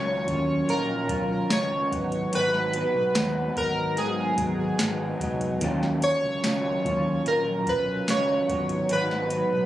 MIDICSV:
0, 0, Header, 1, 6, 480
1, 0, Start_track
1, 0, Key_signature, -6, "minor"
1, 0, Tempo, 821918
1, 1360, Time_signature, 4, 2, 24, 8
1, 5640, End_track
2, 0, Start_track
2, 0, Title_t, "Synth keys"
2, 0, Program_c, 0, 88
2, 0, Note_on_c, 0, 73, 111
2, 408, Note_on_c, 0, 70, 95
2, 425, Note_off_c, 0, 73, 0
2, 890, Note_on_c, 0, 73, 98
2, 898, Note_off_c, 0, 70, 0
2, 1374, Note_on_c, 0, 71, 109
2, 1379, Note_off_c, 0, 73, 0
2, 2088, Note_on_c, 0, 70, 98
2, 2108, Note_off_c, 0, 71, 0
2, 2325, Note_on_c, 0, 68, 76
2, 2331, Note_off_c, 0, 70, 0
2, 3019, Note_off_c, 0, 68, 0
2, 3525, Note_on_c, 0, 73, 107
2, 4218, Note_off_c, 0, 73, 0
2, 4250, Note_on_c, 0, 70, 91
2, 4491, Note_off_c, 0, 70, 0
2, 4491, Note_on_c, 0, 71, 92
2, 4731, Note_on_c, 0, 73, 98
2, 4732, Note_off_c, 0, 71, 0
2, 5213, Note_on_c, 0, 71, 101
2, 5219, Note_off_c, 0, 73, 0
2, 5640, Note_off_c, 0, 71, 0
2, 5640, End_track
3, 0, Start_track
3, 0, Title_t, "Analog synth pad"
3, 0, Program_c, 1, 89
3, 0, Note_on_c, 1, 51, 81
3, 0, Note_on_c, 1, 54, 92
3, 0, Note_on_c, 1, 61, 76
3, 0, Note_on_c, 1, 65, 74
3, 1102, Note_off_c, 1, 61, 0
3, 1102, Note_off_c, 1, 65, 0
3, 1103, Note_off_c, 1, 51, 0
3, 1130, Note_on_c, 1, 56, 79
3, 1130, Note_on_c, 1, 59, 93
3, 1132, Note_on_c, 1, 63, 68
3, 3262, Note_off_c, 1, 56, 0
3, 3262, Note_off_c, 1, 59, 0
3, 3264, Note_off_c, 1, 63, 0
3, 3286, Note_on_c, 1, 51, 80
3, 3287, Note_on_c, 1, 61, 74
3, 3288, Note_on_c, 1, 65, 73
3, 4945, Note_off_c, 1, 51, 0
3, 4946, Note_off_c, 1, 61, 0
3, 4947, Note_off_c, 1, 65, 0
3, 4953, Note_on_c, 1, 59, 96
3, 4956, Note_on_c, 1, 56, 75
3, 4957, Note_on_c, 1, 63, 78
3, 5640, Note_off_c, 1, 54, 0
3, 5640, Note_off_c, 1, 56, 0
3, 5640, Note_off_c, 1, 59, 0
3, 5640, Note_off_c, 1, 63, 0
3, 5640, End_track
4, 0, Start_track
4, 0, Title_t, "Clean electric guitar"
4, 0, Program_c, 2, 27
4, 0, Note_on_c, 2, 51, 85
4, 0, Note_on_c, 2, 54, 81
4, 0, Note_on_c, 2, 61, 89
4, 0, Note_on_c, 2, 65, 98
4, 149, Note_off_c, 2, 65, 0
4, 156, Note_on_c, 2, 65, 54
4, 160, Note_off_c, 2, 51, 0
4, 162, Note_off_c, 2, 61, 0
4, 164, Note_off_c, 2, 54, 0
4, 169, Note_on_c, 2, 61, 50
4, 178, Note_on_c, 2, 54, 45
4, 393, Note_off_c, 2, 54, 0
4, 393, Note_on_c, 2, 51, 56
4, 398, Note_off_c, 2, 65, 0
4, 400, Note_on_c, 2, 54, 63
4, 401, Note_off_c, 2, 61, 0
4, 408, Note_on_c, 2, 61, 71
4, 415, Note_on_c, 2, 65, 75
4, 623, Note_off_c, 2, 65, 0
4, 630, Note_on_c, 2, 65, 56
4, 636, Note_off_c, 2, 61, 0
4, 637, Note_off_c, 2, 51, 0
4, 640, Note_off_c, 2, 54, 0
4, 643, Note_on_c, 2, 61, 43
4, 653, Note_on_c, 2, 54, 44
4, 874, Note_off_c, 2, 54, 0
4, 875, Note_off_c, 2, 65, 0
4, 876, Note_on_c, 2, 51, 82
4, 881, Note_off_c, 2, 61, 0
4, 881, Note_on_c, 2, 54, 81
4, 887, Note_on_c, 2, 61, 90
4, 891, Note_on_c, 2, 65, 84
4, 1113, Note_off_c, 2, 65, 0
4, 1115, Note_on_c, 2, 66, 59
4, 1118, Note_off_c, 2, 51, 0
4, 1121, Note_off_c, 2, 54, 0
4, 1124, Note_off_c, 2, 61, 0
4, 1129, Note_on_c, 2, 59, 55
4, 1138, Note_on_c, 2, 54, 50
4, 1356, Note_on_c, 2, 44, 93
4, 1357, Note_off_c, 2, 54, 0
4, 1358, Note_off_c, 2, 66, 0
4, 1361, Note_off_c, 2, 59, 0
4, 1362, Note_on_c, 2, 51, 87
4, 1364, Note_on_c, 2, 54, 84
4, 1368, Note_on_c, 2, 59, 81
4, 1371, Note_on_c, 2, 66, 89
4, 1589, Note_off_c, 2, 66, 0
4, 1596, Note_on_c, 2, 66, 61
4, 1598, Note_off_c, 2, 44, 0
4, 1601, Note_off_c, 2, 51, 0
4, 1602, Note_off_c, 2, 54, 0
4, 1604, Note_off_c, 2, 59, 0
4, 1612, Note_on_c, 2, 59, 59
4, 1620, Note_on_c, 2, 54, 48
4, 1835, Note_on_c, 2, 44, 81
4, 1836, Note_off_c, 2, 54, 0
4, 1838, Note_off_c, 2, 66, 0
4, 1838, Note_on_c, 2, 51, 96
4, 1842, Note_off_c, 2, 59, 0
4, 1843, Note_on_c, 2, 54, 88
4, 1849, Note_on_c, 2, 59, 90
4, 1850, Note_on_c, 2, 66, 94
4, 2065, Note_off_c, 2, 66, 0
4, 2072, Note_on_c, 2, 66, 55
4, 2077, Note_off_c, 2, 44, 0
4, 2078, Note_off_c, 2, 59, 0
4, 2079, Note_off_c, 2, 51, 0
4, 2081, Note_off_c, 2, 54, 0
4, 2085, Note_on_c, 2, 59, 47
4, 2097, Note_on_c, 2, 54, 49
4, 2310, Note_on_c, 2, 51, 61
4, 2311, Note_off_c, 2, 54, 0
4, 2316, Note_off_c, 2, 66, 0
4, 2318, Note_on_c, 2, 54, 58
4, 2319, Note_off_c, 2, 59, 0
4, 2326, Note_on_c, 2, 59, 65
4, 2332, Note_on_c, 2, 66, 71
4, 2540, Note_off_c, 2, 66, 0
4, 2547, Note_on_c, 2, 66, 53
4, 2552, Note_off_c, 2, 59, 0
4, 2555, Note_off_c, 2, 51, 0
4, 2559, Note_off_c, 2, 54, 0
4, 2559, Note_on_c, 2, 59, 55
4, 2571, Note_on_c, 2, 54, 46
4, 2793, Note_off_c, 2, 66, 0
4, 2795, Note_on_c, 2, 44, 81
4, 2797, Note_off_c, 2, 54, 0
4, 2798, Note_on_c, 2, 51, 71
4, 2799, Note_off_c, 2, 59, 0
4, 2804, Note_on_c, 2, 54, 80
4, 2807, Note_on_c, 2, 59, 84
4, 2811, Note_on_c, 2, 66, 84
4, 3028, Note_off_c, 2, 66, 0
4, 3035, Note_on_c, 2, 66, 64
4, 3037, Note_off_c, 2, 44, 0
4, 3039, Note_off_c, 2, 51, 0
4, 3041, Note_off_c, 2, 54, 0
4, 3041, Note_off_c, 2, 59, 0
4, 3048, Note_on_c, 2, 59, 64
4, 3055, Note_on_c, 2, 54, 56
4, 3277, Note_off_c, 2, 54, 0
4, 3277, Note_off_c, 2, 66, 0
4, 3277, Note_on_c, 2, 51, 86
4, 3283, Note_off_c, 2, 59, 0
4, 3284, Note_on_c, 2, 54, 101
4, 3287, Note_on_c, 2, 61, 93
4, 3295, Note_on_c, 2, 65, 108
4, 3510, Note_off_c, 2, 65, 0
4, 3517, Note_on_c, 2, 65, 60
4, 3518, Note_off_c, 2, 51, 0
4, 3522, Note_off_c, 2, 54, 0
4, 3523, Note_off_c, 2, 61, 0
4, 3539, Note_on_c, 2, 54, 52
4, 3758, Note_off_c, 2, 65, 0
4, 3759, Note_off_c, 2, 54, 0
4, 3760, Note_on_c, 2, 51, 81
4, 3766, Note_on_c, 2, 54, 85
4, 3770, Note_on_c, 2, 61, 89
4, 3775, Note_on_c, 2, 65, 89
4, 3993, Note_off_c, 2, 65, 0
4, 3999, Note_off_c, 2, 51, 0
4, 4000, Note_on_c, 2, 65, 54
4, 4002, Note_off_c, 2, 54, 0
4, 4004, Note_off_c, 2, 61, 0
4, 4011, Note_on_c, 2, 61, 46
4, 4021, Note_on_c, 2, 54, 51
4, 4236, Note_on_c, 2, 51, 60
4, 4237, Note_off_c, 2, 54, 0
4, 4239, Note_off_c, 2, 65, 0
4, 4244, Note_on_c, 2, 54, 65
4, 4245, Note_off_c, 2, 61, 0
4, 4252, Note_on_c, 2, 61, 68
4, 4258, Note_on_c, 2, 65, 71
4, 4470, Note_off_c, 2, 65, 0
4, 4477, Note_off_c, 2, 51, 0
4, 4477, Note_on_c, 2, 65, 49
4, 4481, Note_off_c, 2, 54, 0
4, 4483, Note_off_c, 2, 61, 0
4, 4490, Note_on_c, 2, 61, 47
4, 4501, Note_on_c, 2, 54, 46
4, 4718, Note_off_c, 2, 65, 0
4, 4719, Note_off_c, 2, 54, 0
4, 4721, Note_on_c, 2, 51, 70
4, 4723, Note_off_c, 2, 61, 0
4, 4726, Note_on_c, 2, 54, 91
4, 4730, Note_on_c, 2, 61, 90
4, 4737, Note_on_c, 2, 65, 96
4, 4952, Note_off_c, 2, 65, 0
4, 4954, Note_on_c, 2, 66, 62
4, 4960, Note_off_c, 2, 51, 0
4, 4962, Note_off_c, 2, 61, 0
4, 4963, Note_off_c, 2, 54, 0
4, 4965, Note_on_c, 2, 59, 55
4, 4975, Note_on_c, 2, 54, 52
4, 5196, Note_off_c, 2, 66, 0
4, 5197, Note_off_c, 2, 54, 0
4, 5197, Note_on_c, 2, 44, 90
4, 5200, Note_on_c, 2, 51, 88
4, 5202, Note_off_c, 2, 59, 0
4, 5204, Note_on_c, 2, 54, 89
4, 5210, Note_on_c, 2, 59, 93
4, 5210, Note_on_c, 2, 66, 80
4, 5425, Note_off_c, 2, 66, 0
4, 5432, Note_on_c, 2, 66, 57
4, 5437, Note_off_c, 2, 59, 0
4, 5438, Note_off_c, 2, 44, 0
4, 5439, Note_off_c, 2, 51, 0
4, 5441, Note_off_c, 2, 54, 0
4, 5444, Note_on_c, 2, 59, 53
4, 5455, Note_on_c, 2, 54, 51
4, 5640, Note_off_c, 2, 54, 0
4, 5640, Note_off_c, 2, 59, 0
4, 5640, Note_off_c, 2, 66, 0
4, 5640, End_track
5, 0, Start_track
5, 0, Title_t, "Fingered electric bass"
5, 0, Program_c, 3, 33
5, 0, Note_on_c, 3, 37, 92
5, 161, Note_off_c, 3, 37, 0
5, 161, Note_on_c, 3, 39, 101
5, 353, Note_off_c, 3, 39, 0
5, 403, Note_on_c, 3, 34, 89
5, 594, Note_off_c, 3, 34, 0
5, 637, Note_on_c, 3, 35, 86
5, 830, Note_off_c, 3, 35, 0
5, 887, Note_on_c, 3, 37, 94
5, 1076, Note_off_c, 3, 37, 0
5, 1121, Note_on_c, 3, 32, 108
5, 1313, Note_off_c, 3, 32, 0
5, 1362, Note_on_c, 3, 32, 103
5, 1649, Note_off_c, 3, 32, 0
5, 1718, Note_on_c, 3, 35, 77
5, 1815, Note_off_c, 3, 35, 0
5, 1838, Note_on_c, 3, 39, 99
5, 2031, Note_off_c, 3, 39, 0
5, 2082, Note_on_c, 3, 32, 113
5, 2320, Note_on_c, 3, 44, 106
5, 2328, Note_off_c, 3, 32, 0
5, 2512, Note_off_c, 3, 44, 0
5, 2555, Note_on_c, 3, 32, 94
5, 2749, Note_off_c, 3, 32, 0
5, 2797, Note_on_c, 3, 32, 93
5, 2990, Note_off_c, 3, 32, 0
5, 3040, Note_on_c, 3, 29, 99
5, 3232, Note_off_c, 3, 29, 0
5, 3280, Note_on_c, 3, 39, 111
5, 3567, Note_off_c, 3, 39, 0
5, 3642, Note_on_c, 3, 37, 81
5, 3737, Note_off_c, 3, 37, 0
5, 3767, Note_on_c, 3, 37, 91
5, 3956, Note_off_c, 3, 37, 0
5, 4002, Note_on_c, 3, 39, 93
5, 4193, Note_off_c, 3, 39, 0
5, 4240, Note_on_c, 3, 34, 96
5, 4432, Note_off_c, 3, 34, 0
5, 4477, Note_on_c, 3, 35, 84
5, 4670, Note_off_c, 3, 35, 0
5, 4723, Note_on_c, 3, 37, 93
5, 4913, Note_off_c, 3, 37, 0
5, 4960, Note_on_c, 3, 32, 107
5, 5151, Note_off_c, 3, 32, 0
5, 5204, Note_on_c, 3, 32, 124
5, 5490, Note_off_c, 3, 32, 0
5, 5563, Note_on_c, 3, 35, 84
5, 5640, Note_off_c, 3, 35, 0
5, 5640, End_track
6, 0, Start_track
6, 0, Title_t, "Drums"
6, 163, Note_on_c, 9, 36, 98
6, 163, Note_on_c, 9, 42, 76
6, 221, Note_off_c, 9, 36, 0
6, 222, Note_off_c, 9, 42, 0
6, 402, Note_on_c, 9, 42, 75
6, 461, Note_off_c, 9, 42, 0
6, 637, Note_on_c, 9, 36, 104
6, 639, Note_on_c, 9, 42, 87
6, 695, Note_off_c, 9, 36, 0
6, 697, Note_off_c, 9, 42, 0
6, 879, Note_on_c, 9, 38, 108
6, 880, Note_on_c, 9, 54, 86
6, 887, Note_on_c, 9, 42, 99
6, 937, Note_off_c, 9, 38, 0
6, 939, Note_off_c, 9, 54, 0
6, 945, Note_off_c, 9, 42, 0
6, 1120, Note_on_c, 9, 36, 119
6, 1125, Note_on_c, 9, 42, 86
6, 1179, Note_off_c, 9, 36, 0
6, 1183, Note_off_c, 9, 42, 0
6, 1238, Note_on_c, 9, 42, 56
6, 1297, Note_off_c, 9, 42, 0
6, 1360, Note_on_c, 9, 42, 104
6, 1418, Note_off_c, 9, 42, 0
6, 1485, Note_on_c, 9, 38, 38
6, 1543, Note_off_c, 9, 38, 0
6, 1597, Note_on_c, 9, 42, 93
6, 1655, Note_off_c, 9, 42, 0
6, 1838, Note_on_c, 9, 54, 91
6, 1841, Note_on_c, 9, 38, 117
6, 1843, Note_on_c, 9, 42, 107
6, 1897, Note_off_c, 9, 54, 0
6, 1900, Note_off_c, 9, 38, 0
6, 1901, Note_off_c, 9, 42, 0
6, 2081, Note_on_c, 9, 36, 100
6, 2084, Note_on_c, 9, 42, 74
6, 2140, Note_off_c, 9, 36, 0
6, 2142, Note_off_c, 9, 42, 0
6, 2319, Note_on_c, 9, 42, 80
6, 2377, Note_off_c, 9, 42, 0
6, 2556, Note_on_c, 9, 36, 107
6, 2557, Note_on_c, 9, 42, 92
6, 2614, Note_off_c, 9, 36, 0
6, 2615, Note_off_c, 9, 42, 0
6, 2798, Note_on_c, 9, 38, 111
6, 2798, Note_on_c, 9, 54, 95
6, 2806, Note_on_c, 9, 42, 100
6, 2856, Note_off_c, 9, 38, 0
6, 2856, Note_off_c, 9, 54, 0
6, 2864, Note_off_c, 9, 42, 0
6, 3039, Note_on_c, 9, 36, 103
6, 3044, Note_on_c, 9, 42, 85
6, 3097, Note_off_c, 9, 36, 0
6, 3102, Note_off_c, 9, 42, 0
6, 3159, Note_on_c, 9, 42, 57
6, 3218, Note_off_c, 9, 42, 0
6, 3277, Note_on_c, 9, 42, 104
6, 3279, Note_on_c, 9, 36, 127
6, 3336, Note_off_c, 9, 42, 0
6, 3338, Note_off_c, 9, 36, 0
6, 3404, Note_on_c, 9, 38, 35
6, 3462, Note_off_c, 9, 38, 0
6, 3517, Note_on_c, 9, 42, 86
6, 3575, Note_off_c, 9, 42, 0
6, 3759, Note_on_c, 9, 38, 116
6, 3761, Note_on_c, 9, 42, 117
6, 3761, Note_on_c, 9, 54, 97
6, 3818, Note_off_c, 9, 38, 0
6, 3819, Note_off_c, 9, 42, 0
6, 3820, Note_off_c, 9, 54, 0
6, 4002, Note_on_c, 9, 36, 92
6, 4006, Note_on_c, 9, 42, 73
6, 4060, Note_off_c, 9, 36, 0
6, 4064, Note_off_c, 9, 42, 0
6, 4240, Note_on_c, 9, 42, 79
6, 4298, Note_off_c, 9, 42, 0
6, 4476, Note_on_c, 9, 36, 104
6, 4479, Note_on_c, 9, 42, 87
6, 4534, Note_off_c, 9, 36, 0
6, 4537, Note_off_c, 9, 42, 0
6, 4719, Note_on_c, 9, 38, 107
6, 4721, Note_on_c, 9, 54, 82
6, 4727, Note_on_c, 9, 42, 101
6, 4777, Note_off_c, 9, 38, 0
6, 4779, Note_off_c, 9, 54, 0
6, 4785, Note_off_c, 9, 42, 0
6, 4959, Note_on_c, 9, 36, 114
6, 4961, Note_on_c, 9, 42, 88
6, 5018, Note_off_c, 9, 36, 0
6, 5020, Note_off_c, 9, 42, 0
6, 5077, Note_on_c, 9, 42, 58
6, 5135, Note_off_c, 9, 42, 0
6, 5193, Note_on_c, 9, 42, 104
6, 5251, Note_off_c, 9, 42, 0
6, 5322, Note_on_c, 9, 38, 35
6, 5380, Note_off_c, 9, 38, 0
6, 5434, Note_on_c, 9, 42, 86
6, 5492, Note_off_c, 9, 42, 0
6, 5640, End_track
0, 0, End_of_file